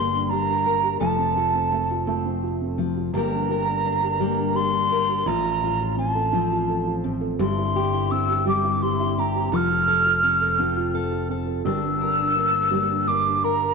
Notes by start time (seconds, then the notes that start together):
Already playing: G1 G2 G3 A#3 D4 G4 A#4 C6
0.12 D4
0.29 D4 G4 A#5
0.47 D4
0.65 A#3 A#4
0.83 G4
1.00 F1 F3 A3 F4 A4 A5
1.18 C4
1.37 F4 A4
1.54 C4
1.72 A3 A4
1.91 F4
2.07 A3 C4 F4
2.25 C4
2.43 F4
2.61 C4
2.78 F3 A3
2.96 F4
3.13 G1 G2 G3 A#3 D4 G4 A#4 A#5
3.31 D4
3.49 G4 A#4
3.67 D4
3.85 A#3 D4
4.02 G4
4.19 G3 A#3 G4
4.37 D4
4.55 D4 G4 C6
4.72 D4
4.90 A#3 A#4
5.09 G4
5.26 A1 A2 F3 F4 A#5
5.44 F4
5.64 F4
5.80 F4
5.97 C4 F4 A5
6.15 A4
6.33 F3 C4 A4
6.51 F4
6.69 A4
6.87 F4
7.04 A2 C4
7.21 A4
7.39 G1 G2 G3 E4 G4 C6
7.57 E4
7.75 G4
7.93 E4
8.11 C4 E4 E6
8.28 G4
8.45 G3 C4 G4 D6
8.64 E4
8.82 E4 G4 C6
8.99 E4
9.17 C4 G4 A#5
9.36 G4
9.52 F1 F3 A4 F6
9.71 F4
9.88 A4
10.06 F4
10.23 C4 A4
10.41 A4
10.58 F3 C4 F4 A4
10.77 F4
10.94 A4
11.11 F4
11.29 C4 A4
11.47 A4
11.65 G1 G2 G3 D4 A#4 E6
11.82 D4
12.00 A#4
12.19 D4
12.36 A#3 D4
12.53 A#4
12.71 G3 A#3 A#4
12.90 D4
13.07 D4 A#4 D6
13.26 D4
13.44 A#3 A#4 A#5
13.62 A#4